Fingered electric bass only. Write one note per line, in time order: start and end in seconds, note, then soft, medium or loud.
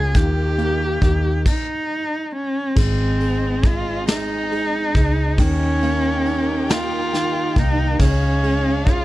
0.00 0.12 C#2 medium
0.14 0.98 D#2 loud
1.02 1.44 D#2 medium
2.77 4.91 G#1 loud
4.95 5.36 C#2 medium
5.38 7.52 D#2 loud
7.56 7.97 C2 medium
7.99 9.05 C#2 medium